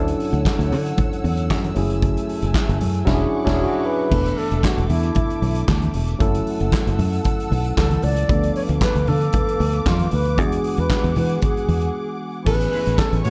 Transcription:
Already playing: D2 F#3 C#4 D4 E4 A4 C#5 F#5 E6
0.08 closed hi-hat
0.20 open hi-hat
0.33 D2, closed hi-hat
0.45 kick, snare, clap, high conga
0.59 D2, closed hi-hat
0.71 D3, open hi-hat, muted conga
0.86 closed hi-hat
0.98 kick, closed hi-hat, muted conga, low conga
1.13 closed hi-hat
1.24 E2, open hi-hat, muted conga
1.37 closed hi-hat
1.50 F#2, kick, snare, clap, high conga
1.64 closed hi-hat, high conga
1.75 F#1 F#3 A3 C#4 E4 G#4 G#5, open hi-hat
1.90 closed hi-hat
2.02 kick, closed hi-hat, muted conga
2.17 closed hi-hat
2.29 open hi-hat
2.42 F#1, closed hi-hat
2.54 kick, snare, clap, high conga
2.69 F#1, closed hi-hat
2.81 F#2, open hi-hat, muted conga, low conga
2.95 closed hi-hat
3.05 E1 F#3 C#4 D4 E4 G#4 F#5 C#6 D6, kick, snare, crash
3.14 G#4
3.45 E1 F#3 C#4 D4 E4, kick, snare, crash
3.54 G#4
3.60 F#4
3.85 B4
4.10 E1 E3 A3 B3 D4 A4 E5 D6, kick, crash, muted conga
4.26 closed hi-hat
4.38 A4, open hi-hat
4.51 E1, closed hi-hat
4.63 F#4, kick, snare, clap, high conga
4.78 E1, closed hi-hat
4.90 E2 E4, open hi-hat, low conga
5.03 closed hi-hat
5.15 kick, closed hi-hat, muted conga, low conga
5.30 closed hi-hat
5.42 B1, open hi-hat, muted conga
5.55 closed hi-hat
5.68 D2, kick, snare, clap, high conga
5.82 closed hi-hat, high conga
5.94 E1, open hi-hat
6.08 closed hi-hat
6.19 F#1 F#3 A3 C#4 E4 A4 F#5 E6, kick, closed hi-hat, muted conga
6.35 closed hi-hat
6.47 open hi-hat
6.60 F#1, closed hi-hat
6.72 kick, snare, clap, high conga
6.87 F#1, closed hi-hat
6.99 F#2, open hi-hat, low conga
7.13 closed hi-hat
7.25 kick, closed hi-hat, muted conga
7.40 closed hi-hat
7.51 B1, open hi-hat, muted conga
7.64 closed hi-hat
7.77 C#2 A4, kick, snare, clap, high conga
7.91 closed hi-hat, high conga
8.02 C#2 D5, open hi-hat
8.16 closed hi-hat
8.28 D2 F3 A3 B3 D4 A4 B4 F5 D6, kick, closed hi-hat, muted conga
8.44 closed hi-hat
8.56 C#5, open hi-hat
8.69 D2, closed hi-hat
8.81 B4, kick, snare, clap, high conga
8.95 D2, closed hi-hat
9.07 D3 A4, open hi-hat, low conga
9.21 closed hi-hat
9.33 kick, closed hi-hat, muted conga, low conga
9.48 closed hi-hat
9.60 D2, open hi-hat, muted conga
9.73 closed hi-hat
9.86 F2 F4, kick, snare, clap, high conga
9.99 closed hi-hat, high conga
10.11 D2 B4, open hi-hat
10.25 closed hi-hat
10.36 E2 E3 G3 B3 D4 F#4 G#4 F#5, kick, closed hi-hat, muted conga
10.43 G#3
10.52 closed hi-hat
10.64 open hi-hat
10.77 E2 B4, closed hi-hat
10.90 kick, snare, clap, high conga
11.04 E2, closed hi-hat
11.16 E3 B4, open hi-hat, low conga
11.30 closed hi-hat
11.42 G#4, kick, closed hi-hat, muted conga
11.57 closed hi-hat
11.68 E2, open hi-hat, muted conga
11.82 closed hi-hat
12.45 A1 E3 A3 B3 C#4 G4 A4 B4 G#5 C#6, kick, crash, muted conga
12.55 G#4
12.61 closed hi-hat
12.72 G#3 E4 B4, open hi-hat
12.86 A1, closed hi-hat
12.98 A4, kick, snare, clap, high conga
13.13 A1, closed hi-hat
13.24 A2 G#3 E4 F#4 C#5, open hi-hat

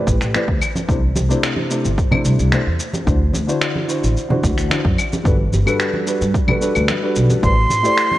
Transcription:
Already playing: A3 E4 G4 B4 C5 D5
0.07 A1, kick, shaker
0.21 A1, finger snap, shaker
0.34 A3 E4 G4 B4 C5 D5, finger snap, high conga, shaker
0.48 D2, kick
0.62 claves, shaker
0.76 high conga, shaker
0.88 C2 C3 A3 D4 E4 C5, kick, shaker
1.16 C2, high conga, shaker
1.29 C3 A3 D4 E4 C5, shaker
1.43 finger snap, shaker
1.57 high conga
1.69 C3 A3 D4 E4 C5, shaker
1.85 G1, shaker
1.98 kick, shaker
2.11 C3 A3 D4 E4 C5, high conga, low conga, claves
2.25 C2, shaker
2.39 C2, shaker
2.51 C3 A3 D4 E4 C5, finger snap, high conga, shaker
2.67 E2
2.80 shaker
2.93 high conga, shaker
3.05 D2 D3 D4 E4 F#4 C5, kick, shaker
3.33 D2, high conga, shaker
3.47 D3 D4 E4 F#4 C5, shaker
3.61 finger snap, shaker
3.75 high conga
3.87 D3 D4 E4 F#4 C5, shaker
4.03 A1, shaker
4.17 shaker
4.28 D3 D4 E4 F#4 C5, high conga, low conga
4.43 D2, kick, shaker
4.58 D2, finger snap, shaker
4.69 D3 D4 E4 F#4 C5, finger snap, high conga, shaker
4.85 F#2, kick
4.98 claves, shaker
5.12 high conga, shaker
5.23 G1 G3 D4 F#4 A4 B4, kick, shaker
5.52 G1, high conga, shaker
5.65 G3 D4 F#4 A4 B4, claves, shaker
5.80 finger snap, shaker
5.93 high conga
6.06 G3 D4 F#4 A4 B4, shaker
6.21 G2, shaker
6.34 kick, shaker
6.47 G3 D4 F#4 A4 B4, high conga, low conga, claves
6.60 G3 D4 F#4 A4 B4, shaker
6.75 D2, claves, shaker
6.88 finger snap, high conga, shaker
7.02 G3 D4 F#4 A4 B4
7.16 B1, shaker
7.30 high conga, shaker
7.42 A1 A3 E4 G4 B4 C5 D5 C6, kick, shaker
7.70 A1, muted conga, high conga, shaker
7.83 A3 E4 G4 A4 C5 D5, shaker
7.97 finger snap, shaker
8.11 high conga

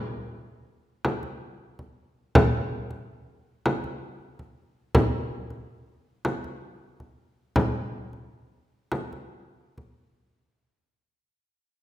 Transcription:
1.05 frame drum
1.23 frame drum
1.79 frame drum
2.35 frame drum
2.91 frame drum
3.66 frame drum
3.84 frame drum
4.39 frame drum
4.95 frame drum
5.50 frame drum
6.25 frame drum
6.44 frame drum
7.00 frame drum
7.56 frame drum
8.13 frame drum
8.92 frame drum
9.12 frame drum
9.78 frame drum

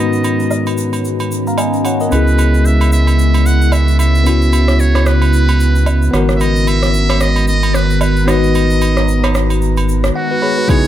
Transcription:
Already playing: G#2 G#3 B3 C#4 D#4 F#4 B4 D#5 A#5
0.13 shaker
0.24 high agogo, shaker
0.40 shaker
0.51 low woodblock, shaker
0.67 high agogo, shaker
0.77 shaker
0.93 high agogo, shaker
1.05 shaker
1.20 high agogo, shaker
1.31 shaker
1.47 F5 A#5, shaker
1.58 D#5 G#5, high agogo, low woodblock, shaker
1.73 shaker
1.85 C#5 F#5, high agogo, shaker
2.00 A#4 D#5, shaker
2.09 C#2 C#3 B3 C#4 E4 B4, high agogo, shaker
2.15 G#4
2.27 shaker
2.38 high agogo, shaker
2.54 shaker
2.65 E5, shaker
2.81 high agogo, shaker
2.92 E5, shaker
3.07 high agogo, shaker
3.19 shaker
3.34 high agogo, shaker
3.46 F#5, shaker
3.62 shaker
3.72 E5, high agogo, low woodblock, shaker
3.88 shaker
3.99 E5, high agogo, shaker
4.15 shaker
4.23 B3 C#4 E4, high agogo, shaker
4.29 F#4
4.42 shaker
4.53 high agogo, shaker
4.68 cross-stick, shaker
4.80 C#5, shaker
4.95 cross-stick, high agogo, shaker
5.06 B4, cross-stick, shaker
5.22 high agogo, shaker
5.33 shaker
5.48 high agogo, shaker
5.60 shaker
5.75 shaker
5.86 high agogo, low woodblock, shaker
6.02 shaker
6.11 G#1 D#3 B3 F#4 A#5, cross-stick, high agogo, shaker
6.16 A#4
6.29 cross-stick, shaker
6.35 E5
6.40 D#5, high agogo, shaker
6.56 shaker
6.67 E5, high agogo, shaker
6.83 cross-stick, shaker
6.94 shaker
7.10 cross-stick, high agogo, shaker
7.21 D#5, cross-stick, shaker
7.36 high agogo, shaker
7.47 D#5, shaker
7.63 high agogo, shaker
7.74 B4, cross-stick, shaker
7.90 shaker
8.01 B4, high agogo, low woodblock, shaker
8.16 shaker
8.25 B3 D#4 F#4 D#5, cross-stick, high agogo, shaker
8.31 B4
8.44 shaker
8.55 high agogo, shaker
8.70 shaker
8.81 high agogo, shaker
8.97 cross-stick, shaker
9.08 shaker
9.24 cross-stick, high agogo, shaker
9.35 cross-stick, shaker
9.50 high agogo, shaker
9.62 shaker
9.77 high agogo, shaker
9.89 shaker
10.04 cross-stick, shaker
10.16 F#4 F#5
10.31 F#4 B4
10.42 G#4 C#5 B5
10.58 F#4 B4
10.68 C#3 B3 D#4 E4 G#4 C#5, kick, high agogo, shaker

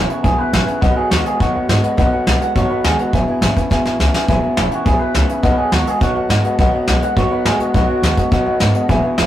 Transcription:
Already playing: E2 C#3 E3 G#3
0.09 E3 G#3 B3 E4 F#4 B4 E5 G#5, muted upright bass stroke, closed hi-hat
0.23 B1 E2 B2 E3 G#3 B3 E4 G#4 B4 E5 G#5, kick, closed hi-hat
0.38 E3 G#3 B3 E4 B4 E5 G#5, muted upright bass stroke
0.53 A1 E2 C#3 E3 G#3 B3 E4 B4 E5 G#5, snare, closed hi-hat
0.67 E3 G#3 B3 E4 B4 E5 G#5, muted upright bass stroke, closed hi-hat
0.81 B1 B2 D#3 F#3 A3 B3 F#4 B4 D#5 F#5, kick, closed hi-hat
0.96 A3 B3 F#4 G#4 B4 D#5 F#5, muted upright bass stroke
1.10 D#2 B2 D#3 G#3 A3 B3 F#4 B4, snare, closed hi-hat
1.25 A3 B3 F#4 G#4 B4 D#5, closed hi-hat
1.40 B1 B2 D#3 F#3 A3 B3 F#4 B4 D#5 F#5, kick, closed hi-hat
1.54 E2 A3 B3 F#4 B4 D#5 F#5
1.69 G#2 B2 D#3 G#3 A3 B3 F#4 B4 D#5, snare, closed hi-hat
1.82 A3 B3 F#4 B4 D#5 F#5, closed hi-hat
1.97 B1 B2 D#3 F#3 A3 B3 F#4 B4 D#5 F#5, kick, closed hi-hat
2.12 A3 B3 F#4 B4 D#5 F#5, muted upright bass stroke
2.26 B1 B2 D#3 G#3 A3 B3 F#4 B4 D#5 F#5, snare, closed hi-hat
2.40 A3 B3 F#4 B4 F#5, muted upright bass stroke, closed hi-hat
2.56 F#2 B2 D#3 F#3 A3 B3 F#4 B4 C#5 D#5 F#5, kick, closed hi-hat
2.69 A3 B3 F#4 B4 D#5 F#5, muted upright bass stroke
2.84 D#2 B2 D#3 G#3 A3 B3 F#4 G#4 B4 D#5 F#5, snare, closed hi-hat
2.98 A3 B3 F#4 B4 D#5 F#5, muted upright bass stroke, closed hi-hat
3.13 E1 E2 B2 E3 G#3 B3 E4 B4 E5 G#5, kick, closed hi-hat
3.28 E3 G#3 B3 E4 B4 E5 G#5, muted upright bass stroke
3.41 G#1 E2 C#3 E3 G#3 B3 E4 B4 E5 G#5, snare, closed hi-hat
3.56 E3 G#3 B3 E4 B4 E5 G#5, kick, closed hi-hat
3.70 E1 E2 B2 E3 G#3 B3 E4 B4 E5 G#5, kick, snare
3.85 A1 E3 G#3 B3 E4 B4 E5 G#5, snare
3.99 C#2 E2 C#3 E3 G#3 B3 E4 B4 E5 G#5, snare
4.14 E3 G#3 B3 E4 B4 E5 G#5, snare
4.28 E1 E2 B2 E3 G#3 B3 E4 B4 E5 G#5, kick, closed hi-hat
4.42 E3 G#3 B3 E4 B4 E5 G#5, muted upright bass stroke
4.57 E1 E2 C#3 E3 G#3 B3 E4 B4 E5 G#5, snare, closed hi-hat
4.71 E3 G#3 B3 E4 F#4 B4 E5 G#5, muted upright bass stroke, closed hi-hat
4.85 B1 E2 B2 E3 G#3 B3 E4 G#4 B4 E5 G#5, kick, closed hi-hat
4.99 E3 G#3 B3 E4 B4 E5 G#5, muted upright bass stroke
5.14 C#2 E2 C#3 E3 G#3 B3 E4 B4 G#5, snare, closed hi-hat
5.28 E3 G#3 B3 E4 B4 E5 G#5, closed hi-hat
5.43 B1 B2 D#3 F#3 A3 B3 F#4 B4 D#5 F#5, kick, closed hi-hat
5.57 A3 B3 F#4 G#4 B4 D#5 F#5, muted upright bass stroke
5.72 D#2 B2 D#3 G#3 A3 B3 F#4 B4 F#5, snare, closed hi-hat
5.86 A3 B3 F#4 G#4 B4 D#5 F#5, muted upright bass stroke, closed hi-hat
6.00 B1 B2 D#3 F#3 A3 B3 F#4 B4 D#5 F#5, kick, closed hi-hat
6.15 E2 A3 B3 F#4 B4 D#5 F#5
6.29 G#2 B2 D#3 G#3 A3 B3 B4 D#5 F#5, snare, closed hi-hat
6.44 A3 B3 F#4 B4 D#5 F#5, muted upright bass stroke, closed hi-hat
6.59 B1 B2 D#3 F#3 A3 B3 F#4 B4 D#5 F#5, kick, closed hi-hat
6.73 A3 B3 F#4 B4 D#5 F#5, muted upright bass stroke
6.87 B1 B2 D#3 G#3 A3 B3 F#4 B4 D#5 F#5, snare, closed hi-hat
7.02 A3 B3 F#4 B4 D#5 F#5, muted upright bass stroke, closed hi-hat
7.16 F#2 B2 D#3 F#3 A3 B3 F#4 B4 C#5 D#5 F#5, kick, closed hi-hat
7.31 A3 B3 F#4 B4 D#5 F#5, muted upright bass stroke
7.45 A2 B2 D#3 G#3 A3 B3 F#4 G#4 B4 D#5, snare, closed hi-hat
7.59 A3 B3 F#4 B4 D#5 F#5, muted upright bass stroke, closed hi-hat
7.74 B1 B2 D#3 F#3 A3 B3 F#4 B4 D#5 F#5, kick, closed hi-hat
7.88 A3 B3 F#4 B4 D#5 F#5, muted upright bass stroke
8.02 D#2 B2 D#3 G#3 A3 B3 F#4 B4 D#5 F#5, snare, closed hi-hat
8.16 A3 B3 F#4 B4 D#5 F#5, muted upright bass stroke, kick, closed hi-hat
8.31 B1 B2 D#3 F#3 A3 B3 F#4 B4 D#5 F#5, kick, closed hi-hat
8.46 E2 A3 B3 F#4 B4 D#5 F#5
8.59 G#2 B2 D#3 G#3 A3 B3 F#4 B4 F#5, snare, closed hi-hat
8.74 A3 B3 F#4 B4 D#5 F#5, muted upright bass stroke, closed hi-hat
8.89 E1 E2 B2 E3 G#3 B3 E4 B4 E5 G#5, kick, closed hi-hat
9.03 E3 G#3 B3 E4 B4 E5 G#5, muted upright bass stroke
9.18 E1 E2 C#3 E3 G#3 B3 E4 B4 G#5, snare, closed hi-hat

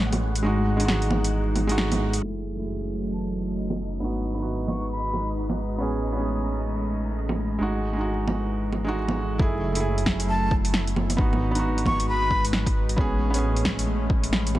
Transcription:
Already playing: A1 G#3 A3 B3 C#4 F#4 G#4 F#5
0.13 closed hi-hat, low bongo
0.36 closed hi-hat
0.43 G#1 E3 G#3 D#4 F#4
0.77 G#3 D#4, closed hi-hat
0.85 F#4, snare
1.02 closed hi-hat
1.10 low bongo
1.24 closed hi-hat
1.56 closed hi-hat, low bongo
1.67 G#3 D#4, closed hi-hat
1.72 F#4
1.78 snare
1.92 closed hi-hat, low bongo
2.13 closed hi-hat
2.21 F#1 E3 F#3 A3 C#4 D#4 E4 D#5
2.26 G#4
2.55 A3 E4
2.63 G#4
3.13 A5
3.70 low bongo
4.00 G#1 G#3 B3 D#4 F#4 B4
4.04 F#4
4.34 B3
4.38 D#4 F#4
4.68 C#6, low bongo
4.91 B5
5.13 low bongo
5.50 low bongo
5.78 A1 A3 B3 C#4 G#4
6.13 B3 C#4
6.20 G#4
7.29 low bongo
7.59 G#1 E3 G#3 D#4 F#4
7.93 G#3 D#4
8.01 F#4
8.27 low bongo
8.72 low bongo
8.84 G#3 D#4 F#4
9.08 low bongo
9.38 F#1 F#3 A3 C#4 E4 G#4, kick
9.72 A3, closed hi-hat
9.77 E4 G#4
9.98 closed hi-hat
10.06 kick, snare
10.20 closed hi-hat
10.29 A5
10.51 kick
10.65 closed hi-hat
10.74 snare
10.87 closed hi-hat
10.96 low bongo
11.10 closed hi-hat, low bongo
11.17 G#1 G#3 B3 D#4 F#4 B4, kick
11.33 low bongo
11.51 B3 D#4, closed hi-hat
11.59 F#4
11.78 closed hi-hat
11.86 C#6, kick, low bongo
12.00 closed hi-hat
12.09 B5
12.31 kick
12.45 closed hi-hat
12.53 snare
12.66 kick, closed hi-hat
12.89 closed hi-hat
12.96 A1 A3 B3 C#4, kick
13.01 G#4
13.30 B3 C#4, closed hi-hat
13.39 G#4
13.56 closed hi-hat
13.65 kick, snare
13.79 closed hi-hat
14.10 kick
14.24 closed hi-hat
14.33 snare
14.47 closed hi-hat
14.55 low bongo

